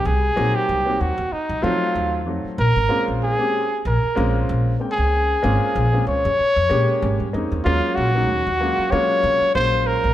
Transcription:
0.05 upright bass C2, trumpet G#4
0.36 upright bass A#1, grand piano F#3 A#3 C4 D#4 F#4
0.55 trumpet G4
0.69 upright bass C2
0.86 grand piano F#3 A#3 C4 D#4 F#4
1.00 upright bass D#2, trumpet F#4
1.17 upright bass D#2, grand piano D#4 F#4
1.32 trumpet D#4, muted upright bass stroke
1.49 upright bass C2
1.62 upright bass F3, grand piano F#3 A3 C4 D#4 F4, trumpet F4
1.95 upright bass D#2
2.26 upright bass F2, grand piano F#3 A3 C4 D#4 F#4
2.44 muted upright bass stroke
2.58 upright bass A#1, trumpet A#4
2.76 upright bass G#1
2.89 grand piano G#3 A#3 C4 C#4 F4
3.08 upright bass A#1
3.23 trumpet G#4
3.38 grand piano G#3 A#3 C4 C#4 G4
3.70 grand piano C#4 G4
3.85 upright bass A#1, trumpet A#4
4.03 muted upright bass stroke
4.15 upright bass A#1, grand piano G#3 A#3 C4 C#4 F4
4.49 upright bass A#1
4.80 grand piano G#3 A#3 C4 C#4 G5
4.91 trumpet G#4
4.98 upright bass C#2
5.42 upright bass G#1, grand piano G#3 A#3 C4 C#4 F4
5.75 upright bass A#1
5.93 grand piano G#3 A#3 C4 C#4 F4
6.07 upright bass C#2, trumpet C#5
6.24 upright bass F2, grand piano C#4 G#4
6.39 muted upright bass stroke
6.56 upright bass F2
6.69 upright bass A#2, grand piano G#3 A#3 C#4 G4
7.02 upright bass G#1, grand piano G#5
7.20 upright bass G2
7.33 upright bass F2, grand piano G#3 A#3 C4 C#4 D#4 D#5
7.52 upright bass D#2
7.64 upright bass D#2, grand piano F#3 G#3 A#3 C#4 F4, trumpet F4
7.95 upright bass A#1, trumpet F#4
8.14 grand piano F#3 G#3 A#3 C#4 D#4
8.29 upright bass D#2
8.46 upright bass D#2, grand piano C#4 F4
8.60 grand piano F#3 G#3 A#3 C#4 F4
8.78 muted upright bass stroke
8.91 upright bass C3, grand piano F#3 G#3 A#3 C#4 F4, trumpet C#5
9.23 upright bass C3
9.41 muted upright bass stroke
9.54 upright bass A#1, grand piano F#3 G#3 A#3 C#4 F4, trumpet C5
9.87 trumpet A#4
10.04 upright bass A#1

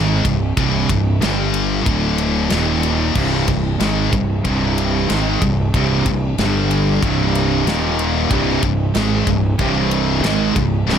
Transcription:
Already playing: fingered electric bass G#1, distorted electric guitar G#2 D#3 G#3
0.25 fingered electric bass C1, distorted electric guitar C2 G2, kick, ride
0.57 fingered electric bass C1, distorted electric guitar C2 G2 C3, kick, ride
0.89 fingered electric bass C1, distorted electric guitar C2 G2, kick, ride
1.21 fingered electric bass G1, distorted electric guitar G2 D3 G3, snare, ride
1.54 ride
1.86 fingered electric bass D1, distorted electric guitar D2 A2 D3, kick, ride
2.18 ride
2.50 fingered electric bass D#1, distorted electric guitar D#2 A#2 D#3, snare, ride
2.83 ride
3.15 fingered electric bass C1, distorted electric guitar C2 G2 C3, kick, crash
3.48 fingered electric bass C1, distorted electric guitar C2 G2, kick, ride
3.80 fingered electric bass G#1, distorted electric guitar G#2 D#3 G#3, snare, ride
4.12 fingered electric bass C1, distorted electric guitar C2 G2, kick, ride
4.45 fingered electric bass C1, distorted electric guitar C2 G2 C3, kick, ride
4.78 ride
5.10 fingered electric bass G#1, distorted electric guitar G#2 D#3 G#3, snare, ride
5.42 fingered electric bass C1, distorted electric guitar C2 G2, kick, ride
5.74 fingered electric bass C1, distorted electric guitar C2 G2 C3, kick, ride
6.06 fingered electric bass C1, distorted electric guitar C2 G2, kick, ride
6.38 fingered electric bass G1, distorted electric guitar G2 D3 G3, snare, ride
6.71 ride
7.03 fingered electric bass C1, distorted electric guitar C2 G2 C3, kick, ride
7.35 ride
7.67 fingered electric bass D#1, distorted electric guitar D#2 A#2 D#3, snare, ride
7.99 ride
8.31 fingered electric bass C1, distorted electric guitar C2 G2 C3, kick, ride
8.63 fingered electric bass C1, distorted electric guitar C2 G2, kick, ride
8.95 fingered electric bass G#1, distorted electric guitar G#2 D#3 G#3, snare, ride
9.27 fingered electric bass C1, distorted electric guitar C2 G2, kick, ride
9.59 fingered electric bass C1, distorted electric guitar C2 G2 C3, kick, ride
9.91 ride
10.23 fingered electric bass G#1, distorted electric guitar G#2 D#3 G#3, snare, ride
10.55 fingered electric bass C1, distorted electric guitar C2 G2, kick, ride
10.87 fingered electric bass C1, distorted electric guitar C2 G2 C3, snare

